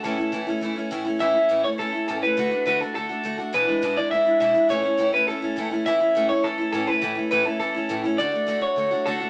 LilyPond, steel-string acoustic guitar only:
\new Staff \with { instrumentName = "Steel-string acoustic guitar" } { \time 4/4 \key a \major \tempo 4 = 206 <a, e a cis' e'>8 <a cis' e'>8 <a, e a cis' e'>8 <a cis' e'>8 <e a cis' e'>8 <a cis' e'>8 <a, e a cis' e'>8 <a cis' e'>8 | <a, e a cis' e'>8 <a cis' e'>8 <a, e a cis' e'>8 <a cis' e'>8 <e a cis' e'>8 <a cis' e'>8 <a, e a cis' e'>8 <a cis' e'>8 | <d a d' fis'>8 <a d' fis'>8 <d a d' fis'>8 <a d' fis'>8 <d a d' fis'>8 <a d' fis'>8 <d a d' fis'>8 <a d' fis'>8 | <e, b, e gis d' e'>8 <e gis d' e'>8 <e, b, e gis d' e'>8 <e gis d' e'>8 <e gis d' e'>8 <e gis d' e'>8 <e, b, e gis d' e'>8 <e gis d' e'>8 |
<a, e a cis' e'>8 <a cis' e'>8 <a, e a cis' e'>8 <a cis' e'>8 <e a cis' e'>8 <a cis' e'>8 <a, e a cis' e'>8 <a cis' e'>8 | <a, e a cis' e'>8 <a cis' e'>8 <a, e a cis' e'>8 <a cis' e'>8 <e a cis' e'>8 <a cis' e'>8 <a, e a cis' e'>8 <a cis' e'>8 | <a, e a cis' e'>8 <a cis' e'>8 <a, e a cis' e'>8 <a cis' e'>8 <e a cis' e'>8 <a cis' e'>8 <a, e a cis' e'>8 <a cis' e'>8 | <d a d' fis'>8 <a d' fis'>8 <d a d' fis'>8 <a d' fis'>8 <d a d' fis'>8 <a d' fis'>8 <d a d' fis'>8 <a d' fis'>8 | }